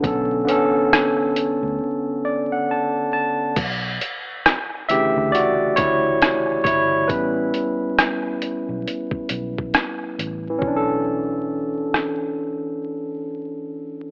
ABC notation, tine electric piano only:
X:1
M:4/4
L:1/16
Q:"Swing 16ths" 1/4=68
K:Bm
V:1 name="Tine electric piano"
[D,B,CA]2 [D,B,CA]8 d f a2 a2 | z6 [Ge]2 [Fd]2 [Ec]4 [Ec]2 | [EB]12 z4 | [E,CDA]16 |]
V:2 name="Tine electric piano" clef=bass
z16 | z6 [C,D,E,A,]8- [C,D,E,A,]2 | [G,B,C]2 z12 z2 | z16 |]